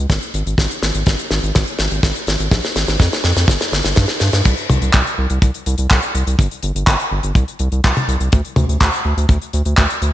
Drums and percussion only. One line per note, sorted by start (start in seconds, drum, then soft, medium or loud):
0.10 kick loud
0.10 snare medium
0.10 closed hi-hat loud
0.23 closed hi-hat medium
0.34 closed hi-hat medium
0.47 closed hi-hat medium
0.58 kick loud
0.58 snare medium
0.58 closed hi-hat medium
0.71 closed hi-hat medium
0.82 snare medium
0.82 closed hi-hat medium
0.95 closed hi-hat medium
1.06 kick loud
1.06 snare medium
1.06 closed hi-hat medium
1.19 closed hi-hat medium
1.30 snare medium
1.44 closed hi-hat medium
1.55 kick loud
1.55 snare medium
1.55 closed hi-hat loud
1.67 closed hi-hat medium
1.79 snare medium
1.79 closed hi-hat medium
1.92 closed hi-hat medium
2.03 kick loud
2.03 snare medium
2.03 closed hi-hat medium
2.16 closed hi-hat medium
2.27 snare medium
2.27 closed hi-hat medium
2.40 closed hi-hat medium
2.51 kick loud
2.51 snare medium
2.51 closed hi-hat medium
2.64 snare medium
2.64 closed hi-hat medium
2.76 snare medium
2.76 closed hi-hat medium
2.87 snare medium
2.87 closed hi-hat soft
3.00 kick loud
3.00 snare loud
3.00 closed hi-hat medium
3.13 snare medium
3.13 closed hi-hat soft
3.24 snare loud
3.36 snare medium
3.36 closed hi-hat medium
3.48 kick loud
3.48 snare loud
3.48 closed hi-hat loud
3.61 snare medium
3.61 closed hi-hat medium
3.73 snare loud
3.73 closed hi-hat medium
3.84 snare medium
3.84 closed hi-hat medium
3.96 kick loud
3.96 snare loud
3.96 closed hi-hat medium
4.08 snare medium
4.08 closed hi-hat medium
4.20 snare loud
4.20 closed hi-hat medium
4.33 snare loud
4.33 closed hi-hat medium
4.45 kick loud
4.45 closed hi-hat loud
4.45 crash medium
4.57 closed hi-hat medium
4.70 closed hi-hat medium
4.70 high tom medium
4.82 closed hi-hat medium
4.93 kick loud
4.93 clap loud
4.93 closed hi-hat loud
5.07 closed hi-hat medium
5.30 closed hi-hat medium
5.42 kick loud
5.42 closed hi-hat loud
5.54 closed hi-hat medium
5.66 closed hi-hat medium
5.78 closed hi-hat medium
5.90 kick loud
5.90 clap loud
5.90 closed hi-hat loud
6.02 closed hi-hat medium
6.15 closed hi-hat medium
6.27 closed hi-hat medium
6.39 kick loud
6.39 closed hi-hat loud
6.51 closed hi-hat medium
6.63 closed hi-hat medium
6.76 closed hi-hat medium
6.87 kick loud
6.87 clap loud
6.87 closed hi-hat loud
7.00 closed hi-hat medium
7.23 closed hi-hat medium
7.35 kick loud
7.35 closed hi-hat medium
7.48 closed hi-hat medium
7.59 closed hi-hat medium
7.72 closed hi-hat medium
7.84 kick loud
7.84 clap loud
7.84 closed hi-hat loud
7.97 closed hi-hat medium
7.97 high tom medium
8.09 closed hi-hat medium
8.20 closed hi-hat medium
8.32 kick loud
8.32 closed hi-hat loud
8.45 closed hi-hat medium
8.56 closed hi-hat medium
8.56 high tom medium
8.69 closed hi-hat medium
8.80 kick loud
8.80 clap loud
8.80 closed hi-hat loud
8.94 closed hi-hat medium
9.18 closed hi-hat medium
9.29 kick loud
9.29 closed hi-hat loud
9.42 closed hi-hat medium
9.53 closed hi-hat medium
9.65 closed hi-hat medium
9.77 kick loud
9.77 clap loud
9.77 closed hi-hat medium
9.90 closed hi-hat medium
10.02 closed hi-hat medium